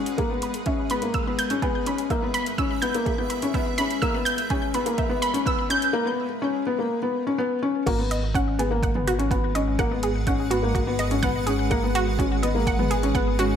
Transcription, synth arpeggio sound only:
0.19 0.25 G#4 medium
0.43 0.49 B5 medium
0.67 0.71 E5 medium
0.91 0.95 B5 loud
1.14 1.21 E6 medium
1.39 1.45 G6 loud
1.62 1.69 G#4 medium
1.87 1.93 B5 medium
2.11 2.15 E5 medium
2.34 2.38 B5 loud
2.58 2.65 E6 loud
2.82 2.89 G6 loud
3.06 3.13 G#4 medium
3.30 3.37 B5 medium
3.54 3.58 E5 medium
3.78 3.82 B5 loud
4.02 4.09 E6 loud
4.25 4.33 G6 loud
4.50 4.57 G#4 medium
4.74 4.81 B5 medium
4.98 5.02 E5 medium
5.22 5.26 B5 loud
5.47 5.53 E6 loud
5.70 5.77 G6 loud
7.87 7.93 F#4 medium
8.11 8.17 D#5 medium
8.35 8.45 F#5 loud
8.59 8.66 G#4 medium
8.83 8.89 F#5 medium
9.07 9.14 F#4 loud
9.31 9.37 F#4 medium
9.55 9.61 D#5 medium
9.79 9.89 F#5 loud
10.03 10.10 G#4 medium
10.27 10.34 F#5 medium
10.51 10.57 F#4 loud
10.75 10.81 F#4 medium
10.99 11.05 D#5 medium
11.23 11.32 F#5 loud
11.47 11.53 G#4 medium
11.71 11.77 F#5 medium
11.95 12.01 F#4 loud
12.19 12.26 F#4 medium
12.43 12.49 D#5 medium
12.67 12.77 F#5 loud
12.91 12.97 G#4 medium
13.15 13.21 F#5 medium
13.39 13.45 F#4 loud

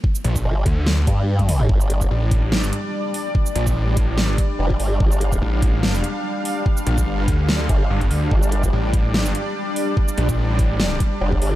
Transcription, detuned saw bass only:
0.24 0.44 A#1 loud
0.66 1.06 D2 loud
2.11 2.54 A1 loud
2.54 2.71 G#1 loud
3.56 3.75 A#1 loud
3.76 4.19 A1 loud
4.19 4.37 G#1 loud
5.42 6.02 A1 loud
6.87 7.06 A#1 loud
7.07 7.26 G1 loud
7.28 7.68 D2 loud
7.90 8.09 G1 loud
8.11 8.30 D2 loud
8.73 9.16 A1 loud
9.16 9.33 G#1 loud
10.18 10.37 A#1 loud
10.38 10.99 A1 loud

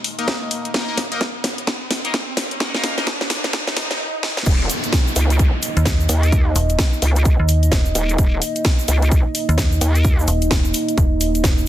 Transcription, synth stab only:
0.19 0.72 A#3 medium
0.19 0.72 D#4 medium
0.19 0.72 A#4 medium
0.19 0.72 D#5 medium
0.74 0.86 A#3 medium
0.74 0.86 D#4 medium
0.74 0.86 A#4 medium
0.74 0.86 D#5 loud
0.88 0.98 A#3 medium
0.88 0.98 D#4 medium
0.88 0.98 A#4 medium
0.88 0.98 D#5 medium
1.12 1.22 A#3 medium
1.12 1.22 D#4 medium
1.12 1.22 A#4 medium
1.12 1.22 D#5 medium
2.05 2.15 A#3 medium
2.05 2.15 D#4 medium
2.05 2.15 A#4 medium
2.05 2.15 D#5 medium
2.60 2.72 A#3 medium
2.60 2.72 D#4 medium
2.60 2.72 A#4 medium
2.60 2.72 F#5 medium
2.74 2.93 A#3 medium
2.74 2.93 D#4 medium
2.74 2.93 A#4 medium
2.74 2.93 F5 medium
2.98 3.08 A#3 medium
2.98 3.08 D#4 medium
2.98 3.08 A#4 medium
2.98 3.08 D#5 medium

